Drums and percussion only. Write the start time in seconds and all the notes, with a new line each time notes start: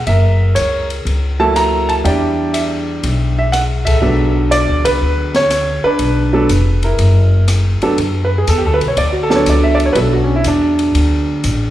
0.07 ride
0.56 hi-hat pedal, ride
0.90 ride
1.07 ride
1.56 cross-stick, hi-hat pedal, ride
1.89 ride
2.05 ride
2.54 hi-hat pedal, ride
3.03 ride
3.53 cross-stick, hi-hat pedal, ride
3.87 kick, ride
4.52 hi-hat pedal, ride
4.85 ride
5.34 snare, ride
5.50 cross-stick, hi-hat pedal, ride
5.99 ride
6.49 hi-hat pedal, ride
6.83 ride
6.99 ride
7.48 cross-stick, hi-hat pedal, ride
7.82 ride
7.98 ride
8.47 hi-hat pedal, ride
8.81 ride
8.97 ride
9.30 snare
9.46 hi-hat pedal, ride
9.80 ride
9.95 ride
10.44 hi-hat pedal, ride
10.79 ride
10.95 ride
11.44 hi-hat pedal, ride